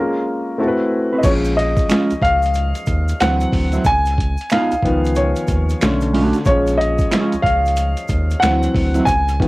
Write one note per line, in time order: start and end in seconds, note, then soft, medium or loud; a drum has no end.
0.00 0.58 G#3 medium
0.00 0.59 A#3 medium
0.00 0.59 C#4 medium
0.00 0.59 F4 medium
0.00 0.60 A#4 medium
0.58 1.24 A3 medium
0.58 1.24 C4 medium
0.58 1.24 E4 medium
0.58 1.25 F#4 medium
0.58 0.68 A4 medium
0.68 1.28 B4 medium
1.13 1.24 C4 soft
1.13 1.23 F#4 soft
1.13 1.23 B4 medium
1.18 1.24 D#5 medium
1.23 1.75 A#1 loud
1.23 1.71 F3 medium
1.23 1.71 G#3 medium
1.23 1.72 C#4 medium
1.23 1.32 C#5 medium
1.23 kick loud
1.23 closed hi-hat medium
1.23 crash medium
1.23 shaker medium
1.44 closed hi-hat soft
1.44 shaker medium
1.57 2.24 D#5 medium
1.57 closed hi-hat medium
1.76 kick loud
1.76 closed hi-hat soft
1.76 shaker soft
1.89 2.12 G#3 medium
1.89 2.12 C#4 medium
1.89 2.13 F4 medium
1.89 finger snap medium
1.89 snare loud
1.89 closed hi-hat medium
1.89 shaker medium
1.92 finger snap medium
2.10 2.16 C#2 soft
2.10 closed hi-hat soft
2.10 shaker soft
2.22 2.73 C#2 loud
2.22 3.23 F5 loud
2.22 kick medium
2.22 closed hi-hat medium
2.42 closed hi-hat medium
2.42 shaker soft
2.54 closed hi-hat medium
2.54 shaker medium
2.75 closed hi-hat medium
2.75 shaker soft
2.86 3.13 D#2 loud
2.86 kick medium
2.86 closed hi-hat medium
2.86 shaker soft
3.08 closed hi-hat soft
3.08 shaker medium
3.21 3.46 D2 loud
3.21 3.82 E3 medium
3.21 3.82 F#3 medium
3.21 3.83 C4 medium
3.21 3.87 F#5 loud
3.21 finger snap medium
3.21 snare loud
3.21 closed hi-hat medium
3.21 shaker medium
3.22 finger snap medium
3.41 closed hi-hat soft
3.41 shaker medium
3.53 3.79 D2 medium
3.53 kick medium
3.53 open hi-hat soft
3.72 3.85 F#3 soft
3.72 3.84 C4 medium
3.72 3.84 E4 medium
3.72 snare soft
3.72 closed hi-hat soft
3.72 shaker soft
3.84 4.36 C#2 loud
3.84 4.53 G#5 loud
3.84 kick loud
3.84 closed hi-hat medium
3.84 shaker medium
4.06 closed hi-hat medium
4.06 shaker soft
4.18 kick medium
4.18 closed hi-hat medium
4.37 closed hi-hat soft
4.37 shaker soft
4.50 4.73 B3 medium
4.50 4.74 D#4 medium
4.50 4.74 F4 medium
4.50 5.18 F5 medium
4.50 finger snap medium
4.50 snare loud
4.50 closed hi-hat medium
4.50 shaker medium
4.53 finger snap medium
4.71 4.77 C#2 soft
4.71 closed hi-hat medium
4.71 shaker soft
4.83 5.34 C#2 medium
4.83 5.77 D#3 medium
4.83 5.77 F3 medium
4.83 5.77 B3 medium
4.83 kick medium
4.83 closed hi-hat medium
5.05 closed hi-hat medium
5.05 shaker soft
5.15 6.10 C#5 medium
5.15 closed hi-hat medium
5.15 shaker medium
5.36 closed hi-hat soft
5.36 shaker soft
5.47 5.74 D#2 loud
5.47 kick medium
5.47 closed hi-hat medium
5.47 shaker soft
5.69 closed hi-hat medium
5.69 shaker medium
5.81 6.33 B1 loud
5.81 6.43 D3 medium
5.81 6.43 A3 medium
5.81 6.44 C#4 medium
5.81 finger snap medium
5.81 muted clean electric guitar stroke soft
5.81 snare loud
5.81 closed hi-hat medium
5.81 shaker medium
6.01 closed hi-hat soft
6.01 shaker medium
6.13 6.36 A3 medium
6.13 6.37 D4 medium
6.13 6.37 F#4 medium
6.13 open hi-hat medium
6.33 snare soft
6.33 closed hi-hat soft
6.33 shaker soft
6.45 6.97 A#1 loud
6.45 6.93 F3 medium
6.45 6.93 G#3 medium
6.45 6.94 C#4 medium
6.45 6.79 C#5 medium
6.45 kick loud
6.45 closed hi-hat medium
6.45 shaker medium
6.67 closed hi-hat medium
6.67 shaker medium
6.78 7.45 D#5 medium
6.78 closed hi-hat medium
6.98 kick medium
6.98 closed hi-hat soft
6.98 shaker soft
7.11 7.34 G#3 medium
7.11 7.34 C#4 medium
7.11 7.35 F4 medium
7.11 finger snap medium
7.11 snare loud
7.11 closed hi-hat medium
7.11 shaker medium
7.13 finger snap medium
7.32 7.38 C#2 medium
7.32 closed hi-hat soft
7.32 shaker soft
7.43 7.95 C#2 loud
7.43 8.37 F5 loud
7.43 kick medium
7.43 closed hi-hat medium
7.66 closed hi-hat medium
7.66 shaker soft
7.76 closed hi-hat medium
7.76 shaker medium
7.97 closed hi-hat medium
7.97 shaker soft
8.08 8.35 D#2 loud
8.08 kick medium
8.08 closed hi-hat medium
8.08 shaker medium
8.30 closed hi-hat soft
8.30 shaker medium
8.40 8.68 D2 medium
8.40 9.04 E3 medium
8.40 9.04 F#3 soft
8.40 9.04 C4 medium
8.40 9.08 F#5 loud
8.40 finger snap medium
8.40 snare loud
8.40 closed hi-hat medium
8.40 shaker medium
8.63 closed hi-hat medium
8.63 shaker medium
8.75 9.00 D2 medium
8.75 kick medium
8.75 open hi-hat soft
8.94 9.06 F#3 medium
8.94 9.06 C4 medium
8.94 9.06 E4 medium
8.94 snare soft
8.94 closed hi-hat soft
8.94 shaker soft
9.05 9.48 C#2 loud
9.05 9.48 G#5 loud
9.05 kick loud
9.05 closed hi-hat medium
9.05 shaker medium
9.28 closed hi-hat medium
9.28 shaker soft
9.40 9.48 D#3 medium
9.40 9.48 F3 medium
9.40 9.48 B3 medium
9.40 kick medium
9.40 closed hi-hat medium